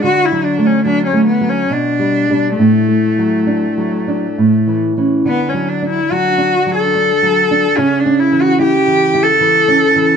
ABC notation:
X:1
M:3/4
L:1/16
Q:1/4=72
K:D
V:1 name="Cello"
F E D C D C B, C D4 | A,8- A,2 z2 | B, C D E F3 A4- A | C D E F G3 A4- A |]
V:2 name="Nylon-string guitar" clef=bass
(3D,2 F,2 A,2 (3F,2 A,2 F,2 (3B,,2 G,2 [G,D]2 | (3A,,2 A,2 F,2 (3D2 F,2 D2 (3A,,2 E,2 [E,C]2 | (3D,2 F,2 D2 (3F,2 D2 F,2 (3D2 F,2 D2 | (3C,2 C2 E,2 (3E2 E,2 E2 (3E,2 C2 E,2 |]